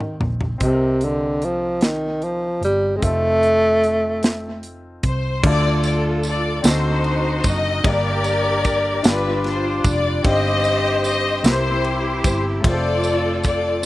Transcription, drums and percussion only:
0.00 mid tom
0.21 floor tom
0.41 floor tom
0.60 kick, closed hi-hat
1.01 closed hi-hat
1.42 closed hi-hat
1.81 snare, closed hi-hat
2.22 closed hi-hat
2.63 closed hi-hat
3.02 kick, closed hi-hat
3.43 closed hi-hat
3.84 closed hi-hat
4.23 snare, closed hi-hat
4.63 closed hi-hat
5.03 kick, closed hi-hat
5.43 kick, crash
5.83 ride, tambourine
6.23 ride, tambourine
6.64 snare, ride, tambourine
7.04 ride
7.44 kick, ride, tambourine
7.84 kick, ride
8.24 ride, tambourine
8.64 kick, ride, tambourine
9.04 snare, ride, tambourine
9.44 snare, ride
9.84 kick, ride, tambourine
10.24 kick, ride
10.64 ride, tambourine
11.04 ride, tambourine
11.44 snare, ride, tambourine
11.84 ride
12.24 kick, ride, tambourine
12.64 kick, ride
13.04 ride, tambourine
13.44 kick, ride, tambourine

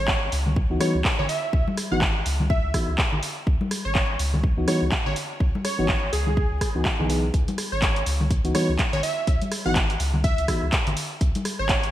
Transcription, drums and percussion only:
0.08 kick, clap
0.32 open hi-hat
0.46 high conga, low conga
0.56 kick
0.80 cross-stick, open hi-hat, high conga
1.05 kick, clap
1.20 low conga
1.29 open hi-hat
1.53 kick
1.68 high conga
1.77 cross-stick, open hi-hat
2.01 kick, clap
2.26 open hi-hat
2.40 high conga, low conga
2.50 kick
2.74 kick, cross-stick, open hi-hat
2.98 kick, clap
3.12 low conga
3.23 open hi-hat
3.47 kick
3.61 high conga
3.71 cross-stick, open hi-hat
3.95 kick, clap
4.19 open hi-hat
4.34 high conga, low conga
4.44 kick
4.68 cross-stick, open hi-hat, high conga
4.92 kick, clap
5.06 low conga
5.16 open hi-hat
5.40 kick
5.55 high conga
5.65 cross-stick, open hi-hat
5.89 kick, clap
6.13 open hi-hat
6.27 high conga, low conga
6.37 kick
6.61 kick, cross-stick, open hi-hat
6.85 kick, clap
7.00 low conga
7.10 open hi-hat
7.34 kick, closed hi-hat
7.48 closed hi-hat, high conga
7.58 cross-stick, open hi-hat
7.82 kick, clap, closed hi-hat
7.96 closed hi-hat
8.06 open hi-hat
8.20 high conga, low conga
8.31 kick, closed hi-hat
8.45 closed hi-hat
8.55 cross-stick, open hi-hat, high conga
8.79 kick, clap, closed hi-hat
8.93 closed hi-hat, low conga
9.03 open hi-hat
9.27 kick, closed hi-hat
9.41 closed hi-hat, high conga
9.52 cross-stick, open hi-hat
9.76 kick, clap, closed hi-hat
9.90 closed hi-hat
10.00 open hi-hat
10.14 high conga, low conga
10.24 kick, closed hi-hat
10.38 closed hi-hat
10.48 kick, cross-stick, open hi-hat
10.72 kick, clap, closed hi-hat
10.87 closed hi-hat, low conga
10.97 open hi-hat
11.21 kick, closed hi-hat
11.35 closed hi-hat, high conga
11.45 cross-stick, open hi-hat
11.69 kick, clap, closed hi-hat
11.84 closed hi-hat

